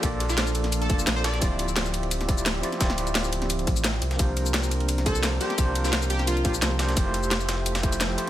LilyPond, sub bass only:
\new Staff \with { instrumentName = "Sub bass" } { \clef bass \time 4/4 \key d \minor \tempo 4 = 173 bes,,2~ bes,,8 f,,8 bes,,4 | d,,2.~ d,,8 r8 | d,,2~ d,,8 a,,4 c,8 | c,2.~ c,8 r8 |
c,2~ c,8 bes,,8 c,4 | f,,2.~ f,,8 r8 | }